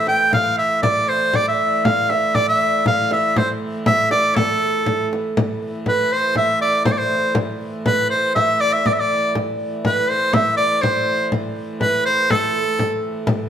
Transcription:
0.00 1.35 A2 medium
0.00 1.35 E3 medium
0.00 1.01 A4 medium
0.00 1.09 C5 medium
0.00 0.37 E5 medium
0.07 0.32 G5 medium
0.07 frame drum medium
0.31 0.64 F5 medium
0.31 0.57 F5 medium
0.31 frame drum loud
0.57 1.47 E5 medium
0.57 0.82 E5 medium
0.57 frame drum soft
0.83 1.10 D5 medium
0.83 1.35 D5 medium
0.83 frame drum loud
1.09 1.37 C5 medium
1.09 3.08 C5 medium
1.33 5.37 A2 medium
1.33 5.37 E3 medium
1.33 2.36 D5 medium
1.33 1.47 D5 medium
1.33 frame drum medium
1.48 1.91 E5 medium
1.48 1.86 E5 medium
1.85 2.11 F5 medium
1.85 2.17 F5 medium
1.85 frame drum medium
2.10 2.36 E5 medium
2.10 2.48 E5 medium
2.10 frame drum medium
2.35 2.48 D5 medium
2.35 4.21 D5 medium
2.35 frame drum medium
2.48 2.83 E5 loud
2.48 2.93 E5 medium
2.86 3.10 F5 medium
2.86 3.18 F5 medium
2.86 frame drum loud
3.11 3.87 E5 medium
3.11 3.39 E5 medium
3.11 frame drum medium
3.36 3.49 C5 medium
3.36 5.37 C5 medium
3.36 frame drum medium
3.86 4.10 E5 loud
3.86 5.59 E5 medium
3.86 frame drum loud
4.11 4.37 D5 loud
4.11 frame drum medium
4.36 5.11 A4 medium
4.36 6.57 A4 medium
4.36 frame drum loud
4.86 frame drum medium
5.13 frame drum medium
5.37 9.35 A2 medium
5.37 9.36 E3 medium
5.37 frame drum loud
5.63 frame drum soft
5.86 6.18 B4 medium
5.86 6.14 B4 medium
5.86 frame drum medium
6.12 6.85 C5 medium
6.12 6.37 C5 medium
6.35 8.08 E5 medium
6.35 6.60 E5 medium
6.35 frame drum medium
6.60 8.45 D5 medium
6.60 6.85 D5 medium
6.60 frame drum soft
6.85 6.93 C5 medium
6.85 7.00 C5 medium
6.85 frame drum loud
6.92 6.99 D5 medium
6.98 7.35 C5 medium
6.98 7.09 C5 medium
7.09 7.18 C5 medium
7.18 7.92 C5 medium
7.35 frame drum loud
7.61 frame drum soft
7.86 8.19 B4 medium
7.86 8.09 B4 medium
7.86 frame drum loud
8.10 8.34 C5 medium
8.10 9.91 C5 medium
8.35 8.62 E5 medium
8.35 8.75 E5 loud
8.35 frame drum medium
8.61 8.74 D5 loud
8.61 8.86 D5 medium
8.73 8.88 E5 medium
8.73 10.33 E5 medium
8.86 8.99 D5 medium
8.86 8.95 D5 medium
8.86 frame drum medium
8.93 9.01 E5 medium
9.00 10.58 D5 medium
9.00 9.36 D5 medium
9.35 13.29 A2 medium
9.35 13.29 E3 medium
9.35 frame drum medium
9.60 frame drum soft
9.85 10.17 B4 medium
9.85 10.11 B4 medium
9.85 frame drum medium
10.10 10.35 C5 medium
10.10 10.82 C5 medium
10.33 10.56 E5 loud
10.33 12.06 E5 medium
10.33 frame drum loud
10.57 10.83 D5 medium
10.57 12.43 D5 medium
10.57 frame drum soft
10.82 11.31 C5 medium
10.82 11.88 C5 medium
10.82 frame drum medium
11.32 frame drum medium
11.56 frame drum soft
11.81 12.04 B4 medium
11.81 12.14 B4 medium
11.81 frame drum medium
12.06 12.32 C5 loud
12.06 13.49 C5 medium
12.30 13.49 A4 medium
12.30 13.04 A4 medium
12.30 frame drum medium
12.79 frame drum medium
13.05 frame drum soft
13.27 13.49 A2 medium
13.27 13.49 E3 medium
13.27 frame drum loud

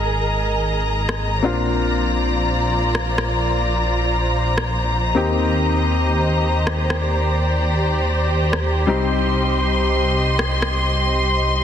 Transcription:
0.00 1.41 G#1 medium
0.00 1.40 G#3 medium
0.00 1.41 A#3 medium
0.00 1.41 D#4 medium
0.00 1.40 G#4 medium
0.00 1.42 G#4 medium
0.00 1.40 A#4 medium
0.00 1.40 D#5 medium
0.00 8.84 A#5 medium
1.09 cross-stick medium
1.42 5.12 A#3 medium
1.42 5.13 C4 medium
1.42 5.13 D4 medium
1.42 5.12 F4 medium
1.42 5.14 F4 medium
1.42 11.64 C5 medium
1.42 5.12 D5 medium
2.95 cross-stick medium
3.18 cross-stick medium
4.58 cross-stick medium
5.15 8.86 D#2 medium
5.15 8.85 A#3 medium
5.15 8.85 C4 medium
5.15 8.85 D#4 medium
5.15 11.64 G4 medium
5.15 8.86 G4 medium
5.15 7.00 D#5 medium
6.67 cross-stick medium
6.90 cross-stick medium
7.02 8.86 D5 medium
8.53 cross-stick medium
8.87 11.64 G3 medium
8.87 11.64 C4 medium
8.87 11.64 D#4 medium
8.87 11.64 G4 medium
8.87 11.64 D#5 medium
8.87 11.64 C6 medium
10.39 cross-stick medium
10.62 cross-stick medium

